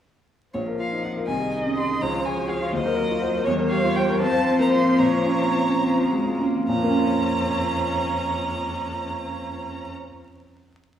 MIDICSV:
0, 0, Header, 1, 5, 480
1, 0, Start_track
1, 0, Key_signature, -5, "minor"
1, 0, Tempo, 489396
1, 528, Time_signature, 6, 3, 24, 8
1, 3397, Tempo, 513699
1, 4837, Tempo, 560224
1, 9970, End_track
2, 0, Start_track
2, 0, Title_t, "Violin"
2, 0, Program_c, 0, 40
2, 527, Note_on_c, 0, 73, 57
2, 606, Note_off_c, 0, 73, 0
2, 779, Note_on_c, 0, 77, 54
2, 1012, Note_off_c, 0, 77, 0
2, 1018, Note_on_c, 0, 78, 52
2, 1097, Note_off_c, 0, 78, 0
2, 1245, Note_on_c, 0, 80, 65
2, 1476, Note_off_c, 0, 80, 0
2, 1482, Note_on_c, 0, 80, 60
2, 1560, Note_off_c, 0, 80, 0
2, 1735, Note_on_c, 0, 84, 69
2, 1978, Note_on_c, 0, 82, 79
2, 1993, Note_off_c, 0, 84, 0
2, 2211, Note_on_c, 0, 80, 67
2, 2226, Note_off_c, 0, 82, 0
2, 2445, Note_on_c, 0, 77, 62
2, 2459, Note_off_c, 0, 80, 0
2, 2674, Note_off_c, 0, 77, 0
2, 2680, Note_on_c, 0, 75, 82
2, 3379, Note_off_c, 0, 75, 0
2, 3387, Note_on_c, 0, 73, 94
2, 3462, Note_off_c, 0, 73, 0
2, 3616, Note_on_c, 0, 77, 89
2, 3858, Note_on_c, 0, 79, 76
2, 3872, Note_off_c, 0, 77, 0
2, 4079, Note_off_c, 0, 79, 0
2, 4084, Note_on_c, 0, 81, 101
2, 4447, Note_off_c, 0, 81, 0
2, 4467, Note_on_c, 0, 82, 75
2, 4568, Note_off_c, 0, 82, 0
2, 4573, Note_on_c, 0, 84, 88
2, 4821, Note_on_c, 0, 82, 83
2, 4835, Note_off_c, 0, 84, 0
2, 6030, Note_off_c, 0, 82, 0
2, 6271, Note_on_c, 0, 82, 92
2, 9032, Note_off_c, 0, 82, 0
2, 9970, End_track
3, 0, Start_track
3, 0, Title_t, "Viola"
3, 0, Program_c, 1, 41
3, 1261, Note_on_c, 1, 75, 60
3, 1981, Note_on_c, 1, 73, 58
3, 1996, Note_off_c, 1, 75, 0
3, 2689, Note_on_c, 1, 72, 64
3, 2704, Note_off_c, 1, 73, 0
3, 2911, Note_on_c, 1, 70, 61
3, 2925, Note_off_c, 1, 72, 0
3, 3148, Note_on_c, 1, 72, 69
3, 3163, Note_off_c, 1, 70, 0
3, 3385, Note_off_c, 1, 72, 0
3, 3391, Note_on_c, 1, 73, 80
3, 4082, Note_off_c, 1, 73, 0
3, 4087, Note_on_c, 1, 72, 79
3, 4826, Note_on_c, 1, 73, 62
3, 4840, Note_off_c, 1, 72, 0
3, 5908, Note_off_c, 1, 73, 0
3, 6280, Note_on_c, 1, 61, 73
3, 9041, Note_off_c, 1, 61, 0
3, 9970, End_track
4, 0, Start_track
4, 0, Title_t, "Grand piano"
4, 0, Program_c, 2, 0
4, 530, Note_on_c, 2, 34, 44
4, 653, Note_on_c, 2, 70, 36
4, 681, Control_c, 2, 64, 127
4, 776, Note_on_c, 2, 65, 36
4, 848, Note_off_c, 2, 70, 0
4, 902, Note_on_c, 2, 63, 32
4, 971, Note_off_c, 2, 65, 0
4, 1015, Note_on_c, 2, 65, 35
4, 1021, Note_off_c, 2, 63, 0
4, 1141, Note_on_c, 2, 70, 37
4, 1211, Note_off_c, 2, 65, 0
4, 1239, Note_off_c, 2, 34, 0
4, 1253, Note_on_c, 2, 36, 38
4, 1261, Note_off_c, 2, 70, 0
4, 1280, Control_c, 2, 64, 0
4, 1378, Note_on_c, 2, 68, 35
4, 1415, Control_c, 2, 64, 127
4, 1510, Note_on_c, 2, 63, 40
4, 1571, Note_off_c, 2, 68, 0
4, 1627, Note_on_c, 2, 61, 36
4, 1697, Note_off_c, 2, 63, 0
4, 1743, Note_off_c, 2, 61, 0
4, 1749, Note_on_c, 2, 68, 41
4, 1864, Note_on_c, 2, 63, 41
4, 1935, Note_off_c, 2, 68, 0
4, 1952, Note_off_c, 2, 36, 0
4, 1980, Note_off_c, 2, 63, 0
4, 1980, Note_on_c, 2, 37, 52
4, 1995, Control_c, 2, 64, 0
4, 2104, Note_on_c, 2, 65, 49
4, 2172, Control_c, 2, 64, 127
4, 2220, Note_on_c, 2, 68, 43
4, 2289, Note_off_c, 2, 65, 0
4, 2323, Note_on_c, 2, 66, 38
4, 2406, Note_off_c, 2, 68, 0
4, 2438, Note_on_c, 2, 68, 54
4, 2446, Note_off_c, 2, 66, 0
4, 2562, Note_on_c, 2, 65, 56
4, 2632, Note_off_c, 2, 68, 0
4, 2666, Note_off_c, 2, 37, 0
4, 2673, Note_on_c, 2, 39, 54
4, 2682, Note_off_c, 2, 65, 0
4, 2705, Control_c, 2, 64, 0
4, 2800, Note_on_c, 2, 70, 56
4, 2846, Control_c, 2, 64, 127
4, 2913, Note_on_c, 2, 66, 46
4, 2989, Note_off_c, 2, 70, 0
4, 3038, Note_on_c, 2, 65, 42
4, 3106, Note_off_c, 2, 66, 0
4, 3150, Note_on_c, 2, 66, 58
4, 3156, Note_off_c, 2, 65, 0
4, 3277, Note_on_c, 2, 70, 45
4, 3345, Note_off_c, 2, 66, 0
4, 3368, Note_off_c, 2, 39, 0
4, 3396, Note_off_c, 2, 70, 0
4, 3399, Note_on_c, 2, 40, 70
4, 3414, Control_c, 2, 64, 0
4, 3510, Note_on_c, 2, 70, 54
4, 3586, Control_c, 2, 64, 127
4, 3626, Note_on_c, 2, 67, 57
4, 3696, Note_off_c, 2, 70, 0
4, 3742, Note_on_c, 2, 65, 60
4, 3814, Note_off_c, 2, 67, 0
4, 3860, Note_on_c, 2, 67, 55
4, 3861, Note_off_c, 2, 65, 0
4, 3980, Note_on_c, 2, 70, 60
4, 4051, Note_off_c, 2, 67, 0
4, 4080, Note_off_c, 2, 40, 0
4, 4085, Note_on_c, 2, 41, 64
4, 4100, Note_off_c, 2, 70, 0
4, 4119, Control_c, 2, 64, 0
4, 4207, Note_on_c, 2, 65, 59
4, 4250, Control_c, 2, 64, 127
4, 4331, Note_on_c, 2, 60, 53
4, 4407, Note_off_c, 2, 65, 0
4, 4448, Note_on_c, 2, 58, 50
4, 4530, Note_off_c, 2, 60, 0
4, 4572, Note_on_c, 2, 65, 52
4, 4578, Note_off_c, 2, 58, 0
4, 4692, Note_on_c, 2, 60, 48
4, 4778, Note_off_c, 2, 65, 0
4, 4806, Note_off_c, 2, 41, 0
4, 4821, Note_on_c, 2, 46, 58
4, 4827, Note_off_c, 2, 60, 0
4, 4855, Control_c, 2, 64, 0
4, 4942, Note_on_c, 2, 65, 45
4, 4993, Control_c, 2, 64, 127
4, 5054, Note_on_c, 2, 61, 44
4, 5137, Note_off_c, 2, 65, 0
4, 5175, Note_on_c, 2, 60, 43
4, 5253, Note_off_c, 2, 61, 0
4, 5296, Note_on_c, 2, 65, 46
4, 5302, Note_off_c, 2, 60, 0
4, 5422, Note_on_c, 2, 61, 44
4, 5494, Note_off_c, 2, 65, 0
4, 5543, Note_on_c, 2, 60, 37
4, 5617, Note_off_c, 2, 61, 0
4, 5666, Note_off_c, 2, 60, 0
4, 5666, Note_on_c, 2, 65, 41
4, 5784, Note_on_c, 2, 66, 38
4, 5862, Note_off_c, 2, 65, 0
4, 5909, Note_off_c, 2, 66, 0
4, 5913, Note_on_c, 2, 65, 43
4, 6036, Note_on_c, 2, 61, 47
4, 6112, Note_off_c, 2, 65, 0
4, 6160, Note_on_c, 2, 53, 37
4, 6234, Note_off_c, 2, 61, 0
4, 6241, Note_off_c, 2, 46, 0
4, 6280, Note_on_c, 2, 46, 58
4, 6282, Note_off_c, 2, 53, 0
4, 6299, Control_c, 2, 64, 0
4, 6340, Note_on_c, 2, 53, 55
4, 6401, Note_on_c, 2, 58, 60
4, 6437, Control_c, 2, 64, 127
4, 6462, Note_on_c, 2, 61, 55
4, 6519, Note_on_c, 2, 65, 60
4, 6579, Note_on_c, 2, 73, 58
4, 9042, Note_off_c, 2, 46, 0
4, 9102, Note_off_c, 2, 53, 0
4, 9163, Note_off_c, 2, 58, 0
4, 9170, Control_c, 2, 64, 0
4, 9224, Note_off_c, 2, 61, 0
4, 9281, Note_off_c, 2, 65, 0
4, 9341, Note_off_c, 2, 73, 0
4, 9970, End_track
5, 0, Start_track
5, 0, Title_t, "Cello"
5, 0, Program_c, 3, 42
5, 537, Note_on_c, 3, 53, 41
5, 1272, Note_on_c, 3, 51, 45
5, 1286, Note_off_c, 3, 53, 0
5, 1981, Note_off_c, 3, 51, 0
5, 1987, Note_on_c, 3, 53, 47
5, 2687, Note_on_c, 3, 54, 59
5, 2702, Note_off_c, 3, 53, 0
5, 3385, Note_off_c, 3, 54, 0
5, 3391, Note_on_c, 3, 55, 64
5, 4103, Note_on_c, 3, 53, 70
5, 4117, Note_off_c, 3, 55, 0
5, 5502, Note_off_c, 3, 53, 0
5, 5543, Note_on_c, 3, 53, 57
5, 5787, Note_on_c, 3, 56, 55
5, 5800, Note_off_c, 3, 53, 0
5, 6032, Note_on_c, 3, 58, 48
5, 6045, Note_off_c, 3, 56, 0
5, 6278, Note_off_c, 3, 58, 0
5, 6283, Note_on_c, 3, 41, 73
5, 9044, Note_off_c, 3, 41, 0
5, 9970, End_track
0, 0, End_of_file